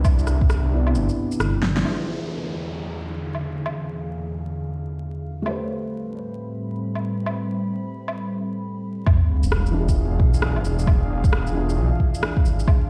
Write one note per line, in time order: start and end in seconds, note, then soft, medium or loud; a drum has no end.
0.00 0.39 C2 loud
0.00 0.67 C3 medium
0.00 1.82 C3 medium
0.00 0.70 B3 medium
0.00 1.82 B3 medium
0.00 1.82 D4 medium
0.00 0.71 E4 medium
0.00 1.82 E4 medium
0.00 0.72 D5 medium
0.05 kick loud
0.05 low woodblock medium
0.05 shaker medium
0.19 shaker soft
0.27 cross-stick medium
0.27 shaker medium
0.41 0.96 C2 loud
0.41 kick loud
0.50 cross-stick loud
0.50 shaker medium
0.69 1.82 C3 medium
0.69 1.84 B3 medium
0.74 1.85 E4 medium
0.74 1.86 D5 medium
0.87 low woodblock medium
0.95 1.08 G1 medium
0.95 shaker medium
1.09 shaker soft
1.32 shaker medium
1.39 1.84 G1 medium
1.39 cross-stick loud
1.39 shaker medium
1.63 snare medium
1.77 snare medium
1.82 5.42 E2 medium
1.82 5.42 D3 medium
1.82 5.42 E3 medium
1.82 5.43 D4 medium
1.82 5.42 G#4 medium
1.82 5.42 F5 medium
1.82 downlifter medium
1.82 low woodblock medium
1.87 5.45 F4 medium
1.87 5.46 G#4 medium
3.35 low woodblock soft
3.66 low woodblock medium
5.42 9.03 A2 medium
5.42 9.03 G3 medium
5.42 9.03 A3 medium
5.42 9.03 C4 medium
5.42 9.04 G4 medium
5.42 9.03 B5 medium
5.42 low woodblock medium
5.48 9.06 B4 medium
5.48 9.07 C5 medium
6.95 low woodblock soft
7.26 low woodblock medium
8.08 low woodblock medium
9.06 12.64 D4 medium
9.06 12.64 G#4 medium
9.06 12.64 F5 medium
9.06 kick loud
9.06 sub drop medium
9.06 low woodblock medium
9.43 10.18 E1 loud
9.43 shaker medium
9.52 cross-stick loud
9.66 shaker soft
9.71 11.50 E3 medium
9.71 11.52 D4 medium
9.76 11.54 F4 medium
9.76 11.55 G#4 medium
9.89 kick medium
9.89 shaker medium
10.20 10.55 B1 medium
10.20 kick loud
10.34 shaker medium
10.42 cross-stick loud
10.56 10.64 G#1 medium
10.56 low woodblock soft
10.65 11.22 E1 loud
10.65 shaker soft
10.79 shaker medium
10.87 kick loud
10.87 low woodblock medium
11.24 11.79 E1 loud
11.24 kick loud
11.24 shaker medium
11.33 cross-stick loud
11.47 shaker soft
11.51 12.65 E3 medium
11.51 12.66 D4 medium
11.57 12.68 F4 medium
11.57 12.69 G#4 medium
11.69 shaker medium
11.77 11.91 B1 medium
12.00 kick medium
12.15 shaker medium
12.23 cross-stick loud
12.37 kick loud
12.45 12.58 G#1 medium
12.45 shaker soft
12.59 shaker medium
12.67 12.90 A3 medium
12.67 12.90 C4 medium
12.67 12.90 G4 medium
12.67 kick loud
12.67 low woodblock medium